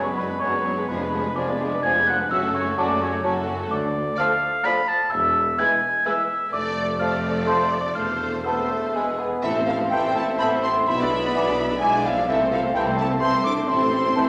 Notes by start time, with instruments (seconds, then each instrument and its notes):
Already playing: tuba F#1, double bass section F#1, cello section F#2, bassoon F#3, french horn section G#3 B3, clarinet B4, celesta C#6
0.05 viola section G#3, violin section B3 B4
0.16 viola section F#3, violin section D4 G#4, oboe B4, celesta B5
0.28 viola section G#3, violin section B3 B4
0.39 double bass section F#1, tuba F#1, cello section F#2, viola section F#3, bassoon F#3, violin section D4 G#4, clarinet B4, oboe C#5, flute section G#5, celesta C#6
0.53 viola section G#3, violin section B3 B4
0.64 viola section F#3, violin section D4 G#4
0.77 viola section G#3, violin section B3 B4
0.88 double bass section F1, tuba F1, cello section F2, viola section F3, french horn section D4, violin section D4 G#4, oboe B4, celesta B5
1.01 viola section G#3, violin section B3 B4
1.12 viola section F3, violin section D4 G#4
1.24 viola section G#3, violin section B3 B4
1.36 double bass section F1, tuba F1, cello section F2, viola section F3, bassoon F3, violin section D4 G#4, clarinet D5, oboe D5, flute section G#5, celesta D6
1.48 viola section G#3, violin section B3 B4
1.58 viola section F3, violin section D4 G#4
1.70 viola section G#3, violin section B3 B4
1.82 double bass section F1, tuba F1, cello section F2, viola section F3, bassoon F3, violin section D4 G#4, clarinet D5, flute section G#5, oboe G#5, celesta G#6
1.95 viola section G#3, violin section B3 B4
2.07 viola section F3, violin section D4 G#4, oboe F#5, celesta F#6
2.18 viola section G#3, violin section B3 B4
2.29 double bass section F#1, tuba F#1, cello section F#2, viola section F#3, french horn section A3 C#4, violin section C#4 F#4, oboe E5, celesta E6
2.41 viola section A3, violin section F#4 A4
2.53 viola section F#3, violin section C#4 F#4, oboe C#5, celesta C#6
2.65 viola section A3, violin section F#4 A4
2.77 double bass section F#1, tuba F#1, cello section F#2, bassoon F#3, viola section F#3, violin section C#4 F#4, clarinet C#5, oboe D5, flute section A5, celesta D6
2.88 viola section A3, violin section F#4 A4
3.00 viola section F#3, violin section C#4 F#4, oboe C#5, celesta C#6
3.12 viola section A3, violin section F#4 A4
3.22 double bass section F#1, tuba F#1, cello section F#2, viola section F#3, bassoon F#3, violin section C#4 F#4, clarinet C#5, flute section A5
3.35 viola section A3, violin section F#4 A4
3.47 viola section F#3, violin section C#4 F#4
3.58 viola section A3, violin section F#4 A4
3.70 double bass section D2, tuba D2, cello section D2, oboe D5, celesta D6
4.17 bassoon F3, french horn section A3 F4, viola section A3, violin section F4 D5, clarinet A4, oboe F5, flute section A5, celesta F6
4.63 bassoon F3, french horn section A3 F4, viola section A3, violin section F4 D5, clarinet A4, flute section A5, oboe B5, celesta B6
4.88 oboe A5, celesta A6
5.10 double bass section E1, tuba E1, cello section E2, oboe E5, celesta E6
5.58 bassoon E3, viola section G#3, french horn section G#3 E4, violin section E4 B4, clarinet B4, oboe G#5, flute section G#5, celesta G#6
6.05 bassoon E3, viola section G#3, french horn section G#3 E4, violin section E4 B4, clarinet B4, oboe E5, flute section G#5, celesta E6
6.53 tuba F1, double bass section F1, cello section F2, viola section A3, violin section A4 D5, oboe D5, celesta D6
6.98 bassoon F3, viola section A3, french horn section A3 F4, violin section A4 D5, clarinet A4, oboe F5, flute section A5, celesta F6
7.47 bassoon F3, french horn section A3 F4, clarinet A4, oboe C5, flute section A5, celesta C6
7.71 oboe D5, celesta D6
7.95 double bass section E1, tuba E1, cello section E2, viola section A3, violin section A4 C5, oboe F5, celesta F6
8.44 viola section A3, french horn section A3, bassoon B3, violin section A4 C5, clarinet C5, oboe E5, flute section A5, celesta E6
8.49 french horn section C4
8.71 bassoon A3
8.93 bassoon G#3, viola section B3, violin section G#4 B4, clarinet B4, flute section G#5
8.98 french horn section G#3 B3
9.19 bassoon B3
9.43 tuba A1, double bass section A1, cello section A2, french horn section E3, viola section C4 E4, violin section A4 E5, clarinet E5, celesta E5
9.56 viola section A3 C4, violin section C5
9.67 viola section C4 E4, violin section A4 F5, celesta F5
9.71 french horn section F3
9.81 viola section A3 C4, violin section C5
9.91 tuba A1, double bass section A1, cello section A2, bassoon E3, french horn section G3, viola section C4 E4, violin section A4 G5, oboe C5, celesta G5, flute section A5
10.05 viola section A3 C4, violin section C5
10.15 french horn section A3, viola section C4 E4, violin section A4 A5, celesta A5
10.28 viola section A3 C4, violin section C5
10.39 double bass section A1, tuba A1, cello section A2, bassoon E3, french horn section B3, viola section C4 E4, violin section A4 B5, oboe C5, flute section A5, celesta B5
10.52 viola section A3 C4, violin section C5
10.63 french horn section C4, viola section C4 E4, violin section A4 C6, celesta C6
10.75 viola section A3 C4, violin section C5
10.81 celesta C6
10.87 tuba B1, double bass section B1, cello section B2, french horn section B3, viola section B3 E4, violin section E5 B5, celesta B5
11.00 viola section G#3 D4, violin section D5
11.11 viola section B3 E4, violin section E5
11.24 viola section G#3 D4, violin section D5
11.34 tuba B1, double bass section B1, cello section B2, bassoon E3, viola section B3 E4, clarinet D5, oboe D5, violin section E5, flute section G#5
11.47 viola section G#3 D4, violin section D5
11.59 viola section B3 E4, violin section E5
11.70 viola section G#3 D4, violin section D5
11.81 double bass section B1, tuba B1, cello section B2, bassoon E3, french horn section G#3, viola section B3 E4, oboe D5, violin section E5 G#5, flute section G#5, celesta G#5
11.93 viola section G#3 D4, violin section D5
12.05 french horn section F3, viola section B3 E4, violin section E5 F5, celesta F5
12.16 viola section G#3 D4, violin section D5
12.28 tuba C2, double bass section C2, cello section C3, french horn section E3, viola section C4 E4, violin section A4 E5, clarinet C5, celesta E5
12.40 viola section A3 C4, violin section C5
12.51 french horn section F3, viola section C4 E4, violin section A4 F5, celesta F5
12.62 viola section A3 C4, violin section C5
12.74 double bass section C2, tuba C2, cello section C3, bassoon E3, french horn section G3, viola section C4 E4, violin section A4 G5, oboe C5, clarinet E5, celesta G5, flute section A5
12.86 viola section A3 C4, violin section C5
12.97 french horn section A3, viola section C4 E4, violin section A4 A5, celesta A5
13.09 viola section A3 C4, violin section C5
13.19 tuba C2, double bass section C2, cello section C3, bassoon E3, viola section C4 E4, french horn section C4, violin section A4 C6, oboe C5, flute section A5, celesta C6
13.32 viola section A3 C4, violin section C5
13.44 viola section C4 E4, french horn section D4, violin section A4 D6, celesta D6
13.56 viola section A3 C4, violin section C5
13.67 tuba A1, double bass section A1, cello section A2, french horn section C4, viola section C4 E4, violin section A4 C6, clarinet A4, celesta C6
13.80 viola section A3 C4, violin section C5
13.92 viola section C4 E4, violin section A4
14.04 viola section A3 C4, violin section C5
14.15 tuba A1, double bass section A1, cello section A2, bassoon E3, viola section C4 E4, violin section A4, clarinet C5, oboe C5, flute section A5